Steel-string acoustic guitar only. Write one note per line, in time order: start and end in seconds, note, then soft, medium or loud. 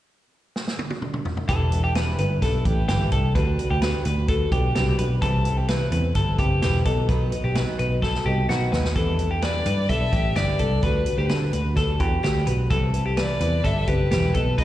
1.49 1.72 E3 medium
1.49 1.72 G3 medium
1.49 1.72 D4 medium
1.49 1.72 E4 medium
1.49 1.71 B4 loud
1.72 1.95 D4 soft
1.72 1.96 E4 soft
1.72 1.95 B4 soft
1.96 2.19 E3 medium
1.96 2.19 G3 medium
1.96 2.19 D4 medium
1.96 2.19 E4 medium
1.96 2.18 B4 medium
2.19 2.42 D4 soft
2.19 2.43 E4 soft
2.19 2.42 B4 medium
2.43 2.66 G3 medium
2.43 2.66 D4 medium
2.43 2.66 E4 medium
2.43 2.65 B4 medium
2.66 2.89 D4 soft
2.66 2.89 E4 soft
2.66 2.89 B4 medium
2.89 3.12 E3 medium
2.89 3.12 G3 medium
2.89 3.13 D4 medium
2.89 3.12 E4 medium
2.89 3.11 B4 medium
3.12 3.35 D4 soft
3.12 3.36 E4 medium
3.12 3.35 B4 medium
3.35 3.59 D3 medium
3.35 3.59 G3 medium
3.35 3.59 D4 medium
3.35 3.59 F#4 medium
3.35 3.58 B4 loud
3.59 3.82 D4 soft
3.59 3.82 F#4 soft
3.59 3.82 B4 medium
3.82 4.05 D3 medium
3.82 4.06 G3 medium
3.82 4.06 D4 medium
3.82 4.05 F#4 medium
3.82 4.04 B4 medium
4.05 4.28 D4 soft
4.05 4.29 F#4 soft
4.05 4.29 B4 medium
4.28 4.52 G3 medium
4.28 4.52 D4 medium
4.28 4.52 F#4 medium
4.28 4.51 B4 medium
4.52 4.75 D4 soft
4.52 4.76 F#4 medium
4.52 4.75 B4 medium
4.75 4.99 D3 medium
4.75 4.99 G3 medium
4.75 4.99 D4 medium
4.75 4.98 F#4 medium
4.75 4.97 B4 loud
4.99 5.23 D4 medium
4.99 5.22 F#4 soft
4.99 5.22 B4 medium
5.22 5.45 C3 medium
5.22 5.45 E3 medium
5.22 5.46 G3 loud
5.22 5.45 C4 medium
5.22 5.44 E4 loud
5.22 5.43 B4 loud
5.45 5.68 G3 soft
5.45 5.68 C4 soft
5.45 5.69 E4 medium
5.45 5.68 B4 medium
5.69 5.92 C3 medium
5.69 5.92 E3 medium
5.69 5.92 G3 medium
5.69 5.93 C4 medium
5.69 5.92 E4 medium
5.69 5.91 B4 medium
5.92 6.14 G3 soft
5.92 6.15 C4 soft
5.92 6.16 E4 medium
5.92 6.16 B4 medium
6.15 6.39 G3 medium
6.15 6.39 C4 medium
6.15 6.38 E4 medium
6.15 6.38 B4 medium
6.39 6.61 G3 soft
6.39 6.62 C4 soft
6.39 6.62 E4 soft
6.39 6.62 B4 medium
6.62 6.85 C3 medium
6.62 6.86 E3 medium
6.62 6.86 G3 medium
6.62 6.86 C4 medium
6.62 6.85 E4 medium
6.62 6.84 B4 loud
6.85 7.08 F#3 soft
6.85 7.08 B3 soft
6.85 7.09 D#4 medium
6.85 7.09 B4 medium
7.09 7.32 B2 medium
7.09 7.32 D#3 loud
7.09 7.32 F#3 medium
7.09 7.33 B3 medium
7.09 7.32 D#4 medium
7.09 7.31 B4 medium
7.32 7.55 F#3 soft
7.32 7.55 B3 soft
7.32 7.56 D#4 soft
7.32 7.55 B4 soft
7.55 7.79 B2 medium
7.55 7.79 D#3 medium
7.55 7.79 F#3 medium
7.55 7.79 B3 medium
7.55 7.78 D#4 medium
7.55 7.78 B4 medium
7.79 8.01 F#3 soft
7.79 8.02 B3 soft
7.79 8.02 D#4 soft
7.79 8.02 B4 medium
8.02 8.26 F#3 medium
8.02 8.26 B3 medium
8.02 8.25 D#4 medium
8.02 8.24 B4 medium
8.26 8.48 F#3 soft
8.26 8.49 B3 soft
8.26 8.49 D#4 medium
8.26 8.49 B4 medium
8.49 8.72 B2 medium
8.49 8.73 D#3 medium
8.49 8.73 F#3 medium
8.49 8.73 B3 medium
8.49 8.72 D#4 medium
8.49 8.71 B4 medium
8.72 8.96 F#3 soft
8.72 8.97 B3 soft
8.72 8.96 D#4 soft
8.72 8.96 B4 medium
8.96 9.19 E3 medium
8.96 9.20 G3 medium
8.96 9.20 D4 medium
8.96 9.19 E4 medium
8.96 9.18 B4 loud
9.19 9.42 D4 soft
9.19 9.42 E4 soft
9.19 9.42 B4 medium
9.43 9.66 E3 medium
9.43 9.66 G3 medium
9.43 9.66 D4 medium
9.43 9.65 E4 medium
9.43 9.64 B4 medium
9.65 9.88 D4 soft
9.65 9.88 E4 soft
9.65 9.89 B4 soft
9.88 10.12 G3 medium
9.88 10.13 D4 medium
9.88 10.12 E4 medium
9.88 10.11 B4 medium
10.12 10.34 D4 soft
10.12 10.35 E4 soft
10.12 10.35 B4 soft
10.35 10.59 E3 medium
10.35 10.59 G3 medium
10.35 10.59 D4 medium
10.35 10.59 E4 medium
10.35 10.58 B4 medium
10.59 10.82 D4 soft
10.59 10.83 E4 soft
10.59 10.82 B4 medium
10.82 11.06 D3 medium
10.82 11.06 G3 medium
10.82 11.06 D4 medium
10.82 11.05 F#4 medium
10.82 11.04 B4 medium
11.06 11.28 D4 soft
11.06 11.29 F#4 soft
11.06 11.29 B4 soft
11.29 11.53 D3 medium
11.29 11.53 G3 medium
11.29 11.52 D4 medium
11.29 11.52 F#4 medium
11.29 11.50 B4 medium
11.52 11.75 D4 soft
11.52 11.76 F#4 soft
11.52 11.76 B4 soft
11.75 12.00 G3 medium
11.75 12.00 D4 medium
11.75 11.99 F#4 medium
11.75 11.98 B4 medium
11.99 12.23 D4 soft
11.99 12.23 F#4 soft
11.99 12.23 B4 medium
12.23 12.47 D3 medium
12.23 12.47 G3 medium
12.23 12.47 D4 medium
12.23 12.45 F#4 medium
12.23 12.45 B4 medium
12.46 12.71 D4 soft
12.46 12.70 F#4 medium
12.46 12.70 B4 medium
12.70 12.94 C3 medium
12.70 12.94 E3 medium
12.70 12.94 G3 medium
12.70 12.94 C4 loud
12.70 12.93 E4 medium
12.70 12.92 B4 medium
12.94 13.16 G3 soft
12.94 13.17 C4 soft
12.94 13.17 E4 soft
12.94 13.17 B4 medium
13.17 13.41 C3 medium
13.17 13.41 E3 medium
13.17 13.41 G3 medium
13.17 13.41 C4 medium
13.17 13.40 E4 medium
13.17 13.39 B4 medium
13.40 13.63 G3 soft
13.40 13.63 C4 soft
13.40 13.64 E4 medium
13.40 13.64 B4 soft
13.64 13.88 G3 medium
13.64 13.88 C4 medium
13.64 13.87 E4 medium
13.64 13.86 B4 medium
13.87 14.10 G3 soft
13.87 14.10 C4 soft
13.87 14.11 E4 soft
13.87 14.11 B4 soft
14.11 14.35 C3 medium
14.11 14.35 E3 medium
14.11 14.35 G3 medium
14.11 14.35 C4 medium
14.11 14.35 E4 medium
14.11 14.34 B4 medium
14.35 14.58 F#3 soft
14.35 14.58 B3 soft
14.35 14.58 D#4 soft
14.35 14.58 B4 soft
14.58 14.64 B2 medium
14.58 14.64 D#3 medium
14.58 14.64 F#3 medium
14.58 14.64 B3 medium
14.58 14.64 D#4 medium
14.58 14.64 B4 medium